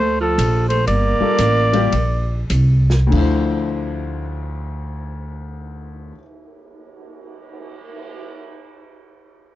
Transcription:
0, 0, Header, 1, 8, 480
1, 0, Start_track
1, 0, Key_signature, -1, "minor"
1, 0, Tempo, 494641
1, 849, Time_signature, 4, 2, 24, 8
1, 1346, Tempo, 559180
1, 2306, Tempo, 643087
1, 7565, End_track
2, 0, Start_track
2, 0, Title_t, "Trumpet"
2, 0, Program_c, 0, 56
2, 0, Note_on_c, 0, 72, 100
2, 184, Note_off_c, 0, 72, 0
2, 211, Note_on_c, 0, 69, 83
2, 649, Note_off_c, 0, 69, 0
2, 671, Note_on_c, 0, 72, 80
2, 832, Note_off_c, 0, 72, 0
2, 851, Note_on_c, 0, 74, 96
2, 2274, Note_off_c, 0, 74, 0
2, 7565, End_track
3, 0, Start_track
3, 0, Title_t, "Grand piano"
3, 0, Program_c, 1, 0
3, 1167, Note_on_c, 1, 55, 51
3, 1174, Note_on_c, 1, 58, 48
3, 1179, Note_on_c, 1, 65, 51
3, 1185, Note_on_c, 1, 69, 59
3, 1328, Note_off_c, 1, 55, 0
3, 1331, Note_off_c, 1, 58, 0
3, 1334, Note_off_c, 1, 65, 0
3, 1336, Note_off_c, 1, 69, 0
3, 1639, Note_on_c, 1, 55, 64
3, 1645, Note_on_c, 1, 58, 59
3, 1652, Note_on_c, 1, 65, 58
3, 1655, Note_on_c, 1, 67, 72
3, 1791, Note_off_c, 1, 55, 0
3, 1794, Note_off_c, 1, 58, 0
3, 1798, Note_off_c, 1, 65, 0
3, 1799, Note_off_c, 1, 67, 0
3, 2726, Note_on_c, 1, 38, 60
3, 2752, Note_on_c, 1, 50, 55
3, 2774, Note_on_c, 1, 53, 51
3, 2794, Note_on_c, 1, 64, 53
3, 2816, Note_on_c, 1, 72, 68
3, 4988, Note_off_c, 1, 38, 0
3, 5014, Note_off_c, 1, 50, 0
3, 5035, Note_off_c, 1, 53, 0
3, 5056, Note_off_c, 1, 64, 0
3, 5078, Note_off_c, 1, 72, 0
3, 7565, End_track
4, 0, Start_track
4, 0, Title_t, "Tenor saxophone"
4, 0, Program_c, 2, 66
4, 0, Note_on_c, 2, 57, 84
4, 175, Note_off_c, 2, 57, 0
4, 197, Note_on_c, 2, 53, 77
4, 641, Note_off_c, 2, 53, 0
4, 673, Note_on_c, 2, 57, 69
4, 825, Note_off_c, 2, 57, 0
4, 831, Note_on_c, 2, 58, 86
4, 2265, Note_off_c, 2, 58, 0
4, 7565, End_track
5, 0, Start_track
5, 0, Title_t, "Upright bass"
5, 0, Program_c, 3, 32
5, 0, Note_on_c, 3, 38, 76
5, 357, Note_off_c, 3, 38, 0
5, 369, Note_on_c, 3, 34, 86
5, 833, Note_off_c, 3, 34, 0
5, 846, Note_on_c, 3, 31, 73
5, 1147, Note_off_c, 3, 31, 0
5, 1347, Note_on_c, 3, 33, 83
5, 1798, Note_off_c, 3, 33, 0
5, 1809, Note_on_c, 3, 34, 70
5, 2290, Note_off_c, 3, 34, 0
5, 2301, Note_on_c, 3, 36, 83
5, 2753, Note_off_c, 3, 36, 0
5, 2765, Note_on_c, 3, 38, 79
5, 4997, Note_off_c, 3, 38, 0
5, 7565, End_track
6, 0, Start_track
6, 0, Title_t, "Cymbal swell"
6, 3080, Note_on_c, 9, 59, 42
6, 6519, Note_off_c, 9, 59, 0
6, 7565, End_track
7, 0, Start_track
7, 0, Title_t, "Muted upright bass strokes"
7, 1170, Note_on_c, 9, 29, 35
7, 1267, Note_off_c, 9, 29, 0
7, 7565, End_track
8, 0, Start_track
8, 0, Title_t, "Drums"
8, 375, Note_on_c, 9, 44, 45
8, 375, Note_on_c, 9, 51, 68
8, 472, Note_off_c, 9, 44, 0
8, 472, Note_off_c, 9, 51, 0
8, 680, Note_on_c, 9, 51, 44
8, 777, Note_off_c, 9, 51, 0
8, 848, Note_on_c, 9, 51, 52
8, 945, Note_off_c, 9, 51, 0
8, 1343, Note_on_c, 9, 44, 55
8, 1343, Note_on_c, 9, 51, 65
8, 1429, Note_off_c, 9, 44, 0
8, 1429, Note_off_c, 9, 51, 0
8, 1644, Note_on_c, 9, 51, 43
8, 1729, Note_off_c, 9, 51, 0
8, 1806, Note_on_c, 9, 51, 55
8, 1892, Note_off_c, 9, 51, 0
8, 2299, Note_on_c, 9, 44, 55
8, 2299, Note_on_c, 9, 51, 60
8, 2375, Note_off_c, 9, 44, 0
8, 2375, Note_off_c, 9, 51, 0
8, 2600, Note_on_c, 9, 38, 50
8, 2675, Note_off_c, 9, 38, 0
8, 2765, Note_on_c, 9, 49, 51
8, 2766, Note_on_c, 9, 36, 52
8, 2840, Note_off_c, 9, 49, 0
8, 2841, Note_off_c, 9, 36, 0
8, 7565, End_track
0, 0, End_of_file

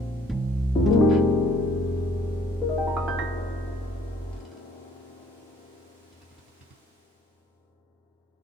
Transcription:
0, 0, Header, 1, 3, 480
1, 0, Start_track
1, 0, Key_signature, -4, "minor"
1, 0, Tempo, 1704545
1, 247, Time_signature, 4, 2, 24, 8
1, 1688, Tempo, 1729107
1, 2365, End_track
2, 0, Start_track
2, 0, Title_t, "Grand piano"
2, 0, Program_c, 0, 0
2, 0, Control_c, 0, 64, 127
2, 0, Note_on_c, 0, 56, 59
2, 0, Note_on_c, 0, 58, 57
2, 0, Note_on_c, 0, 60, 46
2, 0, Note_on_c, 0, 63, 58
2, 0, Note_on_c, 0, 65, 43
2, 0, Note_on_c, 0, 67, 70
2, 0, Note_on_c, 0, 68, 46
2, 213, Note_on_c, 0, 41, 54
2, 226, Note_on_c, 0, 53, 46
2, 237, Note_off_c, 0, 56, 0
2, 241, Note_on_c, 0, 56, 52
2, 245, Note_off_c, 0, 58, 0
2, 246, Note_off_c, 0, 60, 0
2, 248, Note_off_c, 0, 65, 0
2, 249, Note_off_c, 0, 63, 0
2, 250, Note_off_c, 0, 67, 0
2, 250, Note_off_c, 0, 68, 0
2, 251, Control_c, 0, 64, 0
2, 254, Note_on_c, 0, 58, 51
2, 269, Note_on_c, 0, 63, 55
2, 284, Note_on_c, 0, 67, 56
2, 302, Control_c, 0, 64, 127
2, 736, Note_on_c, 0, 70, 39
2, 757, Note_on_c, 0, 75, 34
2, 783, Note_on_c, 0, 79, 36
2, 809, Note_on_c, 0, 82, 33
2, 835, Note_on_c, 0, 87, 31
2, 867, Note_on_c, 0, 91, 32
2, 898, Note_on_c, 0, 94, 30
2, 1203, Note_off_c, 0, 41, 0
2, 1216, Note_off_c, 0, 53, 0
2, 1231, Note_off_c, 0, 56, 0
2, 1244, Note_off_c, 0, 58, 0
2, 1259, Note_off_c, 0, 63, 0
2, 1274, Note_off_c, 0, 67, 0
2, 1715, Note_off_c, 0, 70, 0
2, 1736, Note_off_c, 0, 75, 0
2, 1761, Note_off_c, 0, 79, 0
2, 1786, Note_off_c, 0, 82, 0
2, 1812, Note_off_c, 0, 87, 0
2, 1844, Note_off_c, 0, 91, 0
2, 1874, Note_off_c, 0, 94, 0
2, 2365, End_track
3, 0, Start_track
3, 0, Title_t, "Upright bass"
3, 0, Program_c, 1, 32
3, 0, Note_on_c, 1, 34, 59
3, 74, Note_off_c, 1, 34, 0
3, 83, Note_on_c, 1, 36, 71
3, 234, Note_off_c, 1, 36, 0
3, 242, Note_on_c, 1, 29, 73
3, 1221, Note_off_c, 1, 29, 0
3, 2365, End_track
0, 0, End_of_file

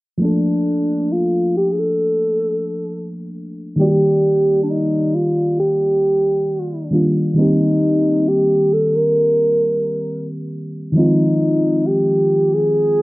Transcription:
0, 0, Header, 1, 3, 480
1, 0, Start_track
1, 0, Key_signature, -2, "major"
1, 0, Tempo, 895522
1, 110, Time_signature, 4, 2, 24, 8
1, 6979, End_track
2, 0, Start_track
2, 0, Title_t, "Alto saxophone"
2, 0, Program_c, 0, 65
2, 120, Note_on_c, 0, 62, 82
2, 602, Note_on_c, 0, 65, 85
2, 610, Note_off_c, 0, 62, 0
2, 836, Note_off_c, 0, 65, 0
2, 842, Note_on_c, 0, 67, 89
2, 920, Note_on_c, 0, 68, 67
2, 928, Note_off_c, 0, 67, 0
2, 963, Note_on_c, 0, 69, 103
2, 971, Note_off_c, 0, 68, 0
2, 1677, Note_off_c, 0, 69, 0
2, 2037, Note_on_c, 0, 67, 106
2, 2455, Note_off_c, 0, 67, 0
2, 2481, Note_on_c, 0, 62, 60
2, 2519, Note_on_c, 0, 63, 83
2, 2527, Note_off_c, 0, 62, 0
2, 2760, Note_on_c, 0, 65, 94
2, 2768, Note_off_c, 0, 63, 0
2, 2995, Note_off_c, 0, 65, 0
2, 2999, Note_on_c, 0, 67, 95
2, 3693, Note_off_c, 0, 67, 0
2, 3957, Note_on_c, 0, 63, 84
2, 4439, Note_on_c, 0, 67, 88
2, 4447, Note_off_c, 0, 63, 0
2, 4679, Note_on_c, 0, 69, 91
2, 4687, Note_off_c, 0, 67, 0
2, 4801, Note_on_c, 0, 70, 112
2, 4809, Note_off_c, 0, 69, 0
2, 5516, Note_off_c, 0, 70, 0
2, 5879, Note_on_c, 0, 63, 84
2, 6359, Note_on_c, 0, 67, 94
2, 6367, Note_off_c, 0, 63, 0
2, 6719, Note_on_c, 0, 68, 109
2, 6727, Note_off_c, 0, 67, 0
2, 6979, Note_off_c, 0, 68, 0
2, 6979, End_track
3, 0, Start_track
3, 0, Title_t, "FM electric piano"
3, 0, Program_c, 1, 5
3, 95, Note_on_c, 1, 53, 64
3, 105, Note_on_c, 1, 57, 55
3, 114, Note_on_c, 1, 58, 54
3, 123, Note_on_c, 1, 62, 57
3, 133, Note_on_c, 1, 69, 67
3, 217, Control_c, 1, 64, 127
3, 2001, Note_off_c, 1, 53, 0
3, 2006, Note_off_c, 1, 57, 0
3, 2011, Note_off_c, 1, 58, 0
3, 2015, Note_off_c, 1, 62, 0
3, 2015, Note_on_c, 1, 51, 64
3, 2020, Note_off_c, 1, 69, 0
3, 2024, Note_on_c, 1, 55, 59
3, 2034, Note_on_c, 1, 58, 60
3, 2038, Control_c, 1, 64, 0
3, 2044, Note_on_c, 1, 74, 58
3, 2053, Note_on_c, 1, 66, 56
3, 2076, Note_off_c, 1, 66, 0
3, 2088, Note_on_c, 1, 67, 68
3, 2144, Control_c, 1, 64, 127
3, 3681, Note_off_c, 1, 51, 0
3, 3686, Note_off_c, 1, 55, 0
3, 3691, Note_off_c, 1, 58, 0
3, 3696, Note_off_c, 1, 74, 0
3, 3703, Note_on_c, 1, 51, 53
3, 3708, Note_on_c, 1, 55, 52
3, 3713, Note_on_c, 1, 58, 50
3, 3717, Note_on_c, 1, 62, 49
3, 3718, Note_off_c, 1, 67, 0
3, 3722, Note_on_c, 1, 65, 60
3, 3928, Note_off_c, 1, 51, 0
3, 3935, Note_on_c, 1, 51, 64
3, 3937, Note_off_c, 1, 55, 0
3, 3944, Note_on_c, 1, 55, 60
3, 3947, Note_off_c, 1, 58, 0
3, 3953, Note_on_c, 1, 58, 58
3, 3954, Note_off_c, 1, 62, 0
3, 3956, Note_off_c, 1, 65, 0
3, 3956, Control_c, 1, 64, 0
3, 3963, Note_on_c, 1, 60, 58
3, 3972, Note_on_c, 1, 67, 69
3, 4053, Control_c, 1, 64, 127
3, 5841, Note_off_c, 1, 51, 0
3, 5846, Note_off_c, 1, 55, 0
3, 5850, Note_off_c, 1, 58, 0
3, 5853, Note_on_c, 1, 51, 62
3, 5855, Note_off_c, 1, 60, 0
3, 5860, Note_off_c, 1, 67, 0
3, 5863, Note_on_c, 1, 53, 58
3, 5872, Note_on_c, 1, 56, 59
3, 5878, Control_c, 1, 64, 0
3, 5882, Note_on_c, 1, 60, 58
3, 5890, Note_on_c, 1, 65, 69
3, 5964, Control_c, 1, 64, 127
3, 6979, Note_off_c, 1, 51, 0
3, 6979, Note_off_c, 1, 53, 0
3, 6979, Note_off_c, 1, 56, 0
3, 6979, Note_off_c, 1, 60, 0
3, 6979, Note_off_c, 1, 65, 0
3, 6979, End_track
0, 0, End_of_file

